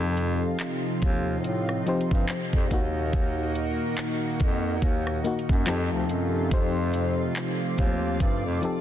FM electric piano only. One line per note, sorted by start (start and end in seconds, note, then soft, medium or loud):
0.00 0.80 F3 medium
0.00 0.80 C4 medium
0.00 0.80 D#4 medium
0.00 0.81 G4 medium
0.00 0.81 A4 medium
1.86 2.64 F3 medium
1.86 2.65 C4 medium
1.86 2.65 D#4 medium
1.86 2.65 G4 medium
1.86 2.66 C5 medium
2.71 4.08 A#3 medium
2.71 4.08 D#4 medium
2.71 4.09 F#4 medium
5.24 5.67 A#3 medium
5.24 5.66 D#4 medium
5.24 5.68 F#4 medium
5.66 6.37 F3 medium
5.66 6.37 C4 medium
5.66 6.38 D#4 medium
5.66 6.38 G4 medium
5.66 6.38 A4 loud
6.51 7.56 F3 medium
6.51 7.56 C4 medium
6.51 7.57 D#4 medium
6.51 7.57 G4 medium
6.51 7.57 C5 loud
8.62 8.81 F3 medium
8.62 8.81 C4 medium
8.62 8.81 D#4 medium
8.62 8.81 G4 medium
8.62 8.81 A4 loud